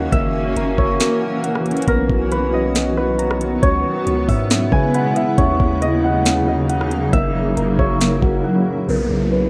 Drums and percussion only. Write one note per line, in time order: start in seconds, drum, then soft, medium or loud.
0.12 kick loud
0.12 closed hi-hat medium
0.56 closed hi-hat medium
0.78 kick medium
1.00 snare loud
1.00 closed hi-hat medium
1.44 closed hi-hat medium
1.55 cross-stick medium
1.66 closed hi-hat soft
1.71 closed hi-hat medium
1.77 closed hi-hat medium
1.82 closed hi-hat medium
1.88 kick loud
1.88 closed hi-hat medium
2.10 kick medium
2.32 closed hi-hat medium
2.75 snare loud
2.75 closed hi-hat medium
3.19 closed hi-hat medium
3.31 cross-stick loud
3.41 closed hi-hat medium
3.63 kick loud
3.63 closed hi-hat medium
4.07 closed hi-hat medium
4.29 kick medium
4.29 open hi-hat soft
4.50 snare loud
4.50 closed hi-hat medium
4.72 kick loud
4.94 closed hi-hat medium
5.16 closed hi-hat medium
5.38 kick loud
5.38 closed hi-hat medium
5.60 kick medium
5.82 closed hi-hat medium
6.25 snare loud
6.25 closed hi-hat medium
6.70 closed hi-hat medium
6.81 cross-stick medium
6.91 closed hi-hat medium
7.13 kick loud
7.13 closed hi-hat medium
7.57 closed hi-hat medium
7.79 kick medium
8.01 snare loud
8.01 closed hi-hat medium
8.22 kick loud